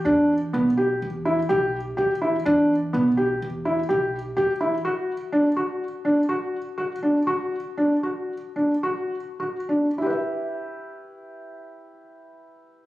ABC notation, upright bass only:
X:1
M:5/4
L:1/8
Q:1/4=124
K:Em
V:1 name="Upright bass" clef=bass
E,,2 B,,,2 E,,2 B,,,2 E,,2 | E,,2 B,,,2 E,,2 B,,,2 E,,2 | z8 z2 | z8 z2 |
z8 z2 |]